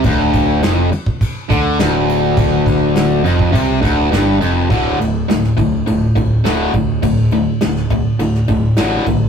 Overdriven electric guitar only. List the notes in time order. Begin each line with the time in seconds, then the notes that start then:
0.05 D2
0.62 F2
0.92 muted overdriven electric guitar stroke
1.50 D3
1.79 D2
3.24 F2
3.52 C3
3.82 D2
4.12 G2
4.40 F2
4.70 D2 A2 D3
5.00 D2 A2
5.28 D2 A2
5.57 D2 A2
5.86 D2 A2
6.15 D2 A2
6.44 D2 A2 D3
6.74 D2 A2
7.03 D2 A2
7.32 D2 A2
7.61 D2 A2
7.91 D2 A2
8.19 D2 A2
8.48 D2 A2
8.77 D2 A2 D3
9.07 D2 A2